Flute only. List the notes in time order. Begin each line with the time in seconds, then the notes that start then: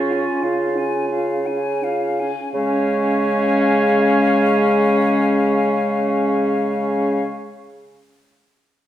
Already playing: F5
0.13 G#5
0.43 F5
0.78 G#5
1.10 F5
1.46 G#5
1.84 F5
2.20 G#5
2.54 F5